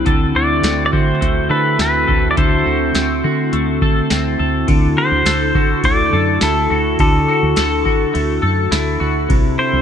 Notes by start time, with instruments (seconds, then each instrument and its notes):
Already playing: clean electric guitar G3 C4 E4, ambient pad E4
0.06 fingered electric bass D2, clean electric guitar D3 A4, ambient pad D3 A3 C4 F#4, kick, closed hi-hat
0.35 fingered electric bass D2, clean electric guitar F#4, pedal steel guitar D5
0.63 fingered electric bass D2, clean electric guitar C4, snare, closed hi-hat, tambourine
0.86 pedal steel guitar D5
0.92 fingered electric bass D3, clean electric guitar F#4, pedal steel guitar C5, kick
1.21 fingered electric bass D2, clean electric guitar A3, kick, closed hi-hat
1.49 fingered electric bass D3, clean electric guitar A4, pedal steel guitar B4
1.79 fingered electric bass D2, clean electric guitar C4, pedal steel guitar B4, snare, closed hi-hat, tambourine
2.07 fingered electric bass D2, clean electric guitar A4, kick
2.31 pedal steel guitar D5
2.36 fingered electric bass D2, clean electric guitar D3 A4, pedal steel guitar C5, kick, closed hi-hat
2.65 fingered electric bass D2, clean electric guitar F#4
2.95 fingered electric bass D2, clean electric guitar C4, snare, closed hi-hat, tambourine
3.24 fingered electric bass D3, clean electric guitar F#4
3.53 fingered electric bass D2, clean electric guitar A3, closed hi-hat
3.82 fingered electric bass D3, clean electric guitar A4, kick
4.10 fingered electric bass D2, clean electric guitar C4, snare, closed hi-hat, tambourine
4.39 fingered electric bass D2, clean electric guitar A4
4.68 fingered electric bass D2, ambient pad D3 D4 E4 F#4 A4, clean electric guitar D3, kick, ride
4.97 clean electric guitar F#4, pedal steel guitar C5
5.12 fingered electric bass D2
5.26 fingered electric bass D2, clean electric guitar A4, snare, ride, tambourine
5.55 fingered electric bass D3, clean electric guitar F#4, kick
5.83 fingered electric bass D2, clean electric guitar A3, pedal steel guitar D5, kick, ride
6.13 fingered electric bass F#2, clean electric guitar A4
6.41 fingered electric bass D2, clean electric guitar E4, pedal steel guitar A4, snare, ride, tambourine
6.70 fingered electric bass D2, clean electric guitar F#4
6.99 fingered electric bass D2, clean electric guitar D3, pedal steel guitar A4, kick, ride
7.28 clean electric guitar F#4
7.43 fingered electric bass D2
7.56 fingered electric bass D2, clean electric guitar A4, snare, ride, tambourine
7.85 fingered electric bass D3, clean electric guitar F#4, kick
8.14 fingered electric bass D2, clean electric guitar A3, ride
8.42 fingered electric bass F#2, clean electric guitar A4
8.71 fingered electric bass D2, clean electric guitar E4, snare, ride, tambourine
9.00 fingered electric bass D2, clean electric guitar F#4
9.29 fingered electric bass C2, clean electric guitar C3, ambient pad C3 C4 D4 G4, kick, ride
9.58 clean electric guitar E4, pedal steel guitar C5
9.73 fingered electric bass C2